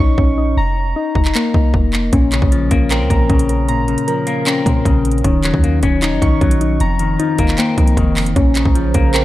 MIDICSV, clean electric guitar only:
0, 0, Header, 1, 2, 480
1, 0, Start_track
1, 0, Key_signature, -5, "minor"
1, 0, Tempo, 389610
1, 702, Time_signature, 4, 2, 24, 8
1, 11392, End_track
2, 0, Start_track
2, 0, Title_t, "Clean electric guitar"
2, 0, Program_c, 0, 27
2, 2620, Note_on_c, 0, 46, 87
2, 2860, Note_on_c, 0, 49, 76
2, 3101, Note_on_c, 0, 53, 76
2, 3340, Note_on_c, 0, 58, 98
2, 3581, Note_on_c, 0, 60, 84
2, 3806, Note_off_c, 0, 46, 0
2, 3821, Note_on_c, 0, 46, 72
2, 4047, Note_off_c, 0, 49, 0
2, 4062, Note_on_c, 0, 49, 90
2, 4302, Note_off_c, 0, 53, 0
2, 4523, Note_off_c, 0, 46, 0
2, 4538, Note_on_c, 0, 46, 91
2, 4541, Note_off_c, 0, 58, 0
2, 4765, Note_off_c, 0, 49, 0
2, 4780, Note_on_c, 0, 49, 79
2, 4782, Note_off_c, 0, 60, 0
2, 5023, Note_on_c, 0, 53, 70
2, 5259, Note_on_c, 0, 58, 99
2, 5499, Note_on_c, 0, 60, 81
2, 5727, Note_off_c, 0, 46, 0
2, 5741, Note_on_c, 0, 46, 74
2, 5965, Note_off_c, 0, 49, 0
2, 5979, Note_on_c, 0, 49, 90
2, 6222, Note_off_c, 0, 53, 0
2, 6455, Note_off_c, 0, 49, 0
2, 6460, Note_off_c, 0, 58, 0
2, 6460, Note_off_c, 0, 60, 0
2, 6460, Note_on_c, 0, 51, 93
2, 6462, Note_off_c, 0, 46, 0
2, 6703, Note_on_c, 0, 54, 71
2, 6943, Note_on_c, 0, 58, 77
2, 7178, Note_off_c, 0, 58, 0
2, 7183, Note_on_c, 0, 61, 102
2, 7424, Note_on_c, 0, 63, 82
2, 7647, Note_off_c, 0, 51, 0
2, 7662, Note_on_c, 0, 51, 76
2, 7888, Note_off_c, 0, 54, 0
2, 7903, Note_on_c, 0, 54, 88
2, 8382, Note_off_c, 0, 51, 0
2, 8382, Note_off_c, 0, 54, 0
2, 8382, Note_off_c, 0, 61, 0
2, 8383, Note_off_c, 0, 63, 0
2, 8384, Note_on_c, 0, 41, 93
2, 8623, Note_on_c, 0, 51, 77
2, 8861, Note_on_c, 0, 53, 69
2, 9104, Note_on_c, 0, 58, 98
2, 9340, Note_on_c, 0, 60, 87
2, 9567, Note_off_c, 0, 41, 0
2, 9582, Note_on_c, 0, 41, 83
2, 9804, Note_off_c, 0, 51, 0
2, 9819, Note_on_c, 0, 51, 95
2, 10061, Note_off_c, 0, 53, 0
2, 10294, Note_off_c, 0, 41, 0
2, 10299, Note_on_c, 0, 46, 84
2, 10301, Note_off_c, 0, 51, 0
2, 10301, Note_off_c, 0, 60, 0
2, 10303, Note_off_c, 0, 58, 0
2, 10540, Note_on_c, 0, 49, 78
2, 10781, Note_on_c, 0, 53, 72
2, 11021, Note_on_c, 0, 58, 100
2, 11261, Note_on_c, 0, 60, 85
2, 11392, Note_off_c, 0, 46, 0
2, 11392, Note_off_c, 0, 49, 0
2, 11392, Note_off_c, 0, 53, 0
2, 11392, Note_off_c, 0, 58, 0
2, 11392, Note_off_c, 0, 60, 0
2, 11392, End_track
0, 0, End_of_file